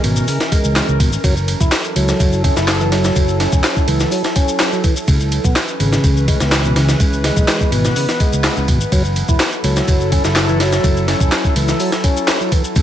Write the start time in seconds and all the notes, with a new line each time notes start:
Already playing: E3 C#4 A#4
0.04 G#1 B2, open hi-hat, ride
0.16 shaker
0.28 C#3, open hi-hat, shaker
0.40 snare, open hi-hat, shaker
0.52 G#3, kick, open hi-hat, ride
0.64 C#2, shaker
0.76 snare, clap, ride, shaker
0.88 C#2 C#3, shaker
1.00 G#1 B2, kick, open hi-hat, ride
1.13 shaker
1.23 F#1 F#3 E4 A4, kick, ride, shaker
1.37 shaker
1.48 open hi-hat, ride
1.60 E1 E4, kick, shaker
1.72 snare, clap, ride, shaker
1.85 ride, shaker
1.96 C#2 F#3, open hi-hat, ride
2.09 snare, shaker
2.20 F#1, kick, ride, shaker
2.33 shaker
2.44 C#4, kick, open hi-hat, ride
2.56 F#1 E4, snare, shaker
2.68 snare, clap, ride, shaker
2.80 E3, shaker
2.92 F#3, snare, open hi-hat, ride
3.04 snare, shaker
3.16 F#1, kick, ride, shaker
3.29 shaker
3.40 C#4, snare, open hi-hat, ride
3.52 E1, kick, shaker
3.64 snare, clap, ride, shaker
3.76 kick, shaker
3.88 C#2 E3, open hi-hat, ride
4.00 snare, shaker
4.12 F#3, open hi-hat, shaker
4.24 snare, open hi-hat, shaker
4.36 C#4, kick, open hi-hat, ride
4.48 shaker
4.60 snare, clap, ride, shaker
4.72 F#3, shaker
4.84 E3, kick, open hi-hat, ride
4.97 shaker
5.08 C#2 C#3 E3 C#4 B4, kick, ride, shaker
5.20 shaker
5.32 open hi-hat, ride
5.44 B1 B3, kick, shaker
5.56 snare, clap, ride, shaker
5.68 ride, shaker
5.80 G#1 C#3, open hi-hat, ride
5.93 snare, shaker
6.04 C#2, kick, ride, shaker
6.17 shaker
6.28 G#3, kick, open hi-hat, ride
6.40 C#2 B3, snare, shaker
6.52 snare, clap, ride, shaker
6.65 B2, shaker
6.76 C#3, snare, open hi-hat, ride
6.89 snare, shaker
7.00 C#2 B3, kick, ride, shaker
7.13 shaker
7.24 G#3, snare, open hi-hat, ride
7.37 B1, kick, shaker
7.48 snare, clap, ride, shaker
7.61 kick, shaker
7.72 G#1 B2, open hi-hat, ride
7.85 snare, shaker
7.96 C#3, open hi-hat, shaker
8.09 snare, open hi-hat, shaker
8.20 G#3, kick, open hi-hat, ride
8.33 C#2, shaker
8.44 snare, clap, ride, shaker
8.57 C#2 C#3, shaker
8.68 G#1 B2, kick, open hi-hat, ride
8.81 shaker
8.92 F#1 F#3 E4 A4, kick, ride, shaker
9.05 shaker
9.16 open hi-hat, ride
9.29 E1 E4, kick, shaker
9.40 snare, clap, ride, shaker
9.53 ride, shaker
9.64 C#2 F#3, open hi-hat, ride
9.76 snare, shaker
9.88 F#1, kick, ride, shaker
10.00 shaker
10.12 C#4, kick, open hi-hat, ride
10.24 F#1 E4, snare, shaker
10.36 snare, clap, ride, shaker
10.49 E3, shaker
10.60 F#3, snare, open hi-hat, ride
10.73 snare, shaker
10.84 F#1, kick, ride, shaker
10.97 shaker
11.08 C#4, snare, open hi-hat, ride
11.20 E1, kick, shaker
11.32 snare, clap, ride, shaker
11.45 kick, shaker
11.56 C#2 E3, open hi-hat, ride
11.68 snare, shaker
11.80 F#3, open hi-hat, shaker
11.92 snare, open hi-hat, shaker
12.04 C#4, kick, open hi-hat, ride
12.17 shaker
12.28 snare, clap, ride, shaker
12.40 F#3, shaker
12.52 E3, kick, open hi-hat, ride
12.64 shaker
12.76 C#2 C#3 E3 C#4 B4, kick, ride, shaker